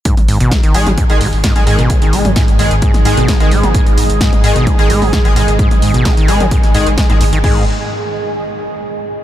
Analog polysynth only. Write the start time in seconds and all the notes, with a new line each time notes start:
0.75 D#3 G#3 G#4
1.10 D#3 G#3 G#4
1.56 D#3 G#3 G#4
1.67 D#3 G#3 G#4
2.59 D#3 G#3 G#4
3.05 D#3 G#3 G#4
3.40 D#3 G#3 G#4
4.44 D#3 G#3 G#4
4.79 D#3 G#3 G#4
5.25 D#3 G#3 G#4
5.36 D#3 G#3 G#4
6.28 D#3 G#3 G#4
6.75 D#3 G#3 G#4
7.10 D#3 G#3 G#4
7.44 D#3 G#3 G#4